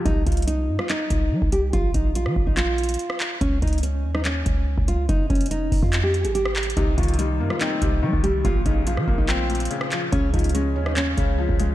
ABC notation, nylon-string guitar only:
X:1
M:4/4
L:1/16
Q:1/4=143
K:Cphr
V:1 name="Nylon-string guitar"
E2 F2 E3 F E6 G2 | F2 E2 F3 E F8 | D2 E2 D3 E D6 F2 | E2 D2 E3 F2 G2 A G4 |
E2 F2 E3 F E6 G2 | F2 E2 F3 E F8 | D2 E2 D3 E D6 F2 |]